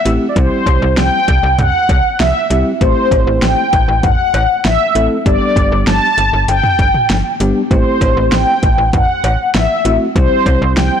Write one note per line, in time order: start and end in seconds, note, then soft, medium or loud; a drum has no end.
0.00 0.18 E5 medium
0.05 0.19 A1 loud
0.05 0.26 A3 medium
0.05 0.26 C4 medium
0.05 0.26 E4 medium
0.05 0.26 G4 medium
0.05 closed hi-hat medium
0.29 0.36 D5 medium
0.36 0.49 C2 loud
0.36 1.18 G3 medium
0.36 1.18 C4 medium
0.36 1.18 E4 medium
0.36 1.18 G4 medium
0.36 0.99 C5 loud
0.36 kick loud
0.36 closed hi-hat medium
0.66 0.80 C2 loud
0.66 kick medium
0.66 closed hi-hat medium
0.66 cowbell medium
0.82 0.95 C2 loud
0.97 1.10 C2 loud
0.97 1.60 G5 loud
0.97 snare loud
0.97 closed hi-hat medium
1.28 1.41 C2 loud
1.28 kick medium
1.28 closed hi-hat medium
1.43 1.56 C2 loud
1.58 1.72 C2 loud
1.58 2.22 F#5 loud
1.58 closed hi-hat medium
1.58 mid tom loud
1.89 2.02 C2 loud
1.89 kick loud
1.89 closed hi-hat medium
1.89 cowbell medium
2.20 2.33 C2 loud
2.20 2.62 E5 loud
2.20 snare loud
2.20 closed hi-hat medium
2.50 2.63 C2 medium
2.50 2.71 G3 medium
2.50 2.71 C4 medium
2.50 2.71 E4 medium
2.50 2.71 G4 medium
2.50 closed hi-hat medium
2.81 2.94 A1 loud
2.81 3.63 A3 medium
2.81 3.63 C4 medium
2.81 3.63 E4 medium
2.81 3.63 G4 medium
2.81 3.44 C5 loud
2.81 kick loud
2.81 closed hi-hat medium
3.11 3.25 A1 loud
3.11 kick medium
3.11 closed hi-hat medium
3.11 cowbell medium
3.27 3.40 A1 loud
3.42 3.55 A1 loud
3.42 4.05 G5 loud
3.42 snare loud
3.42 closed hi-hat medium
3.73 3.86 A1 loud
3.73 kick loud
3.73 closed hi-hat medium
3.88 4.01 A1 loud
4.03 4.17 A1 loud
4.03 4.67 F#5 loud
4.03 kick medium
4.03 closed hi-hat medium
4.03 mid tom loud
4.34 4.47 A1 loud
4.34 closed hi-hat medium
4.34 cowbell medium
4.65 4.78 A1 loud
4.65 5.07 E5 loud
4.65 snare loud
4.65 closed hi-hat medium
4.95 5.08 A1 medium
4.95 5.16 A3 medium
4.95 5.16 C4 medium
4.95 5.16 E4 medium
4.95 5.16 A4 medium
4.95 closed hi-hat medium
5.26 5.39 G1 loud
5.26 6.08 G3 medium
5.26 6.08 B3 medium
5.26 6.08 D4 medium
5.26 6.08 G4 medium
5.26 5.83 D5 loud
5.26 kick loud
5.26 closed hi-hat medium
5.56 5.69 G1 loud
5.56 kick medium
5.56 closed hi-hat medium
5.72 5.85 G1 loud
5.87 6.00 G1 loud
5.87 6.44 A5 loud
5.87 snare loud
5.87 closed hi-hat medium
6.18 6.31 G1 loud
6.18 closed hi-hat medium
6.33 6.46 G1 loud
6.48 6.61 G1 loud
6.48 7.36 G5 loud
6.48 closed hi-hat medium
6.64 mid tom medium
6.79 6.92 G1 loud
6.79 kick medium
6.79 closed hi-hat medium
6.94 mid tom medium
7.10 7.23 G1 loud
7.10 snare loud
7.10 closed hi-hat medium
7.40 7.53 G1 loud
7.40 7.61 G3 medium
7.40 7.61 B3 medium
7.40 7.61 D4 medium
7.40 7.61 G4 loud
7.40 closed hi-hat medium
7.71 7.84 A1 loud
7.71 8.53 A3 medium
7.71 8.53 C4 medium
7.71 8.53 E4 medium
7.71 8.53 G4 medium
7.71 8.34 C5 medium
7.71 kick loud
7.71 closed hi-hat medium
8.01 8.14 A1 loud
8.01 kick medium
8.01 closed hi-hat medium
8.01 cowbell medium
8.17 8.30 A1 loud
8.32 8.45 A1 loud
8.32 8.89 G5 loud
8.32 snare loud
8.32 closed hi-hat medium
8.63 8.76 A1 loud
8.63 kick loud
8.63 closed hi-hat medium
8.78 8.91 A1 loud
8.93 9.06 A1 loud
8.93 9.51 F#5 loud
8.93 kick medium
8.93 closed hi-hat medium
8.93 mid tom loud
9.24 9.37 A1 loud
9.24 closed hi-hat medium
9.24 cowbell medium
9.54 9.68 A1 loud
9.54 9.97 E5 loud
9.54 snare loud
9.54 closed hi-hat medium
9.85 9.98 A1 loud
9.85 10.06 A3 medium
9.85 10.06 C4 medium
9.85 10.06 E4 medium
9.85 10.06 F#4 medium
9.85 closed hi-hat medium
10.16 10.29 C2 loud
10.16 10.98 G3 medium
10.16 10.98 C4 medium
10.16 10.98 E4 medium
10.16 10.98 G4 medium
10.16 10.73 C5 loud
10.16 kick loud
10.16 closed hi-hat medium
10.46 10.59 C2 loud
10.46 kick medium
10.46 closed hi-hat medium
10.46 cowbell medium
10.62 10.75 C2 loud
10.77 10.90 C2 loud
10.77 11.00 G5 loud
10.77 snare loud
10.77 closed hi-hat medium